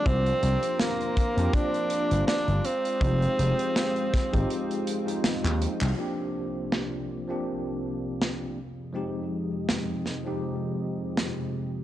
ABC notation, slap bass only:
X:1
M:4/4
L:1/16
Q:"Swing 16ths" 1/4=81
K:Fdor
V:1 name="Slap bass" clef=bass
C,, z C,, z4 F,, z3 G,,, z G,,, z2 | F,,, z F,,, z4 A,,, z4 z E,, z C,, | z16 | z16 |]